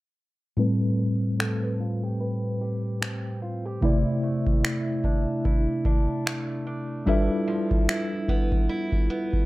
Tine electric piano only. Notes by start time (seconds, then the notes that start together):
0.57 A2 G3 C4 B4
3.81 C3 A3 E4 D5
7.06 G3 D4 F4 A4 B4 E5